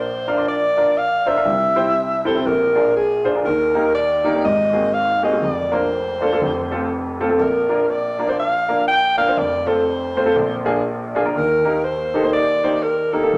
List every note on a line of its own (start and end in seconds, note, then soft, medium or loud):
0.00 1.43 A#1 medium
0.00 1.42 A#2 medium
0.00 0.47 C5 medium
0.28 0.35 D4 medium
0.28 0.35 F4 medium
0.28 0.35 A#4 medium
0.28 0.35 F5 medium
0.37 0.54 D4 medium
0.37 0.54 F4 medium
0.37 0.54 A#4 medium
0.37 0.55 D5 medium
0.48 0.99 D5 loud
0.77 0.92 D4 medium
0.77 0.92 F4 medium
0.77 0.92 A#4 medium
0.77 0.92 D5 medium
0.97 1.29 F5 loud
1.26 1.34 D4 medium
1.26 1.34 F4 medium
1.26 1.34 A#4 medium
1.26 1.34 C5 medium
1.26 2.26 E5 loud
1.36 1.46 D4 medium
1.36 1.46 F4 medium
1.36 1.47 A#4 medium
1.36 1.47 F5 medium
1.45 2.41 C2 medium
1.45 2.41 C3 medium
1.76 1.91 C4 medium
1.76 1.91 E4 medium
1.76 1.91 G4 medium
1.76 1.91 C5 medium
2.25 2.33 C4 medium
2.25 2.32 E4 medium
2.25 2.33 G4 medium
2.25 2.33 A4 medium
2.25 2.48 C5 medium
2.35 2.45 C4 medium
2.35 2.45 E4 medium
2.35 2.45 G4 medium
2.35 2.45 A4 medium
2.46 3.41 A#1 medium
2.46 3.41 A#2 medium
2.46 2.95 A#4 loud
2.75 2.90 D4 medium
2.75 2.90 F4 medium
2.75 2.90 G#4 medium
2.75 2.90 A#4 medium
2.96 3.32 G#4 medium
3.24 3.32 D4 medium
3.24 3.32 F4 medium
3.24 3.32 G#4 medium
3.24 3.32 C5 medium
3.34 3.44 D4 medium
3.34 3.44 F4 medium
3.34 3.45 G#4 medium
3.34 3.45 A#4 medium
3.45 4.39 D#2 medium
3.45 4.39 D#3 medium
3.45 3.91 A#4 medium
3.75 3.89 A#3 medium
3.75 3.89 D#4 medium
3.75 3.89 G4 medium
3.75 3.89 A#4 medium
3.95 4.40 D5 loud
4.24 4.31 A#3 medium
4.24 4.31 D#4 medium
4.24 4.31 G4 medium
4.24 4.31 A#4 medium
4.35 4.44 A#3 medium
4.35 4.44 D#4 medium
4.35 4.44 G4 medium
4.35 4.44 A#4 medium
4.44 5.39 G#1 medium
4.44 5.39 G#2 medium
4.44 4.95 D#5 loud
4.73 4.87 A#3 medium
4.73 4.88 C4 medium
4.73 4.87 F#4 medium
4.73 4.88 G#4 medium
4.94 5.23 F5 loud
5.22 5.29 A#3 medium
5.22 5.30 C4 medium
5.22 5.30 F#4 medium
5.22 5.30 G#4 medium
5.22 5.45 D#5 medium
5.32 5.42 A#3 medium
5.32 5.42 C4 medium
5.32 5.42 F#4 medium
5.32 5.42 G#4 medium
5.42 6.37 F1 medium
5.42 6.37 F2 medium
5.42 5.75 D5 medium
5.71 5.86 A#3 medium
5.71 5.86 D4 medium
5.71 5.86 F4 medium
5.71 5.86 A#4 medium
5.71 7.21 C5 medium
6.21 6.28 A#3 medium
6.21 6.28 D4 medium
6.21 6.29 F4 medium
6.21 6.29 A4 medium
6.32 6.41 A#3 medium
6.32 6.41 D4 medium
6.32 6.41 F4 medium
6.32 6.41 A4 medium
6.41 7.36 F1 medium
6.41 7.36 F2 medium
6.71 6.85 A3 medium
6.71 6.85 C4 medium
6.71 6.86 F4 medium
6.71 6.86 A4 medium
7.20 7.27 A3 medium
7.20 7.27 C4 medium
7.20 7.27 F4 medium
7.20 7.27 A4 medium
7.29 7.39 A3 medium
7.29 7.39 C4 medium
7.29 7.39 F4 medium
7.29 7.39 A4 medium
7.38 9.33 A#1 medium
7.38 9.33 A#2 medium
7.38 7.92 A#4 medium
7.69 7.84 A#3 medium
7.69 7.84 D4 medium
7.69 7.84 F4 medium
7.69 7.84 A#4 medium
7.90 8.39 D5 medium
8.18 8.26 A#3 medium
8.18 8.26 D4 medium
8.18 8.26 F4 medium
8.18 8.26 A#4 medium
8.28 8.45 A#3 medium
8.28 8.45 D4 medium
8.28 8.45 F4 medium
8.28 8.45 C5 medium
8.39 8.85 F5 medium
8.68 8.83 A#3 medium
8.68 8.83 D4 medium
8.68 8.83 F4 medium
8.68 8.83 A#4 medium
8.88 9.15 G5 loud
9.17 9.25 A#3 medium
9.17 9.25 D4 medium
9.17 9.25 F4 medium
9.17 9.25 A#4 medium
9.17 9.39 F5 medium
9.27 9.37 A#3 medium
9.27 9.37 D4 medium
9.27 9.38 F4 medium
9.27 9.38 C5 medium
9.37 10.32 F1 medium
9.37 10.32 F2 medium
9.37 9.69 D5 medium
9.66 9.81 A3 medium
9.66 9.81 C4 medium
9.66 9.81 F4 medium
9.66 9.82 A4 medium
9.66 11.15 C5 medium
10.17 10.24 A3 medium
10.17 10.24 C4 medium
10.17 10.24 F4 medium
10.17 10.24 C5 medium
10.25 10.36 A3 medium
10.25 10.36 C4 medium
10.25 10.36 F4 medium
10.25 10.36 A4 medium
10.35 11.31 A#1 medium
10.35 11.31 A#2 medium
10.65 10.80 A#3 medium
10.65 10.80 D4 medium
10.65 10.80 F4 medium
10.65 10.80 G#4 medium
11.15 11.22 A#3 medium
11.15 11.22 D4 medium
11.15 11.23 F4 medium
11.15 11.23 G#4 medium
11.25 11.35 A#3 medium
11.25 11.35 D4 medium
11.25 11.35 F4 medium
11.25 11.35 A#4 medium
11.35 13.29 D#2 medium
11.35 13.29 D#3 medium
11.35 11.86 A#4 medium
11.65 11.79 A#3 medium
11.65 11.79 D#4 medium
11.65 11.79 G4 medium
11.65 11.80 A#4 medium
11.84 12.32 C5 loud
12.14 12.21 A#3 medium
12.14 12.21 D#4 medium
12.14 12.22 G4 medium
12.14 12.22 A4 medium
12.23 12.41 A#3 medium
12.23 12.41 D#4 medium
12.23 12.41 G4 medium
12.23 12.41 C5 medium
12.33 12.85 D5 loud
12.63 12.78 A#3 medium
12.63 12.78 D#4 medium
12.63 12.79 G4 medium
12.63 12.79 C5 medium
12.83 13.14 A#4 medium
13.13 13.20 A#3 medium
13.13 13.20 D#4 medium
13.13 13.21 G4 medium
13.13 13.38 A4 medium
13.13 13.21 A#4 medium
13.23 13.33 A#3 medium
13.23 13.33 D#4 medium
13.23 13.33 G4 medium
13.23 13.33 A4 medium
13.33 13.38 F1 medium
13.33 13.38 F2 medium